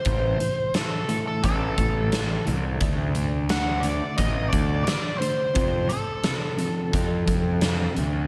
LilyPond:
<<
  \new Staff \with { instrumentName = "Lead electric guitar" } { \time 4/4 \key d \phrygian \tempo 4 = 87 c''4 a'8. a'16 a'4. r8 | r4 fis''8 d''8 ees''8 d''8 d''8 c''8~ | c''8 a'2. r8 | }
  \new Staff \with { instrumentName = "Clean electric guitar" } { \clef bass \time 4/4 \key d \phrygian <a, e a>8 <a, e>8 <a, e>8 <a, e a>8 <a, e>8 <a, e a>8 <a, e>8 <a, e>8 | <d a d'>8 <d a>8 <d a>8 <d a d'>8 <d a>8 <d a d'>8 <d a>8 <d a>8 | <f, c f>8 <f, c>8 <f, c>8 <f, c f>8 <f, c>8 <f, c f>8 <f, c>8 <f, c>8 | }
  \new Staff \with { instrumentName = "Picked electric bass" } { \clef bass \time 4/4 \key d \phrygian a,,8 r4. a,,8 a,,4 c,8 | d,2 a,,8 d,8 r4 | f,8 r4. f,8 f,4 d,8 | }
  \new DrumStaff \with { instrumentName = "Drums" } \drummode { \time 4/4 <hh bd>8 hh8 <hh sn>8 hh8 <hh bd>8 <hh bd>8 <hh sn>8 hh8 | <hh bd>8 hh8 <hh sn>8 hh8 <hh bd>8 <hh bd>8 <hh sn>8 hh8 | <hh bd>8 hh8 <hh sn>8 hh8 <hh bd>8 <hh bd>8 <hh sn>8 hh8 | }
>>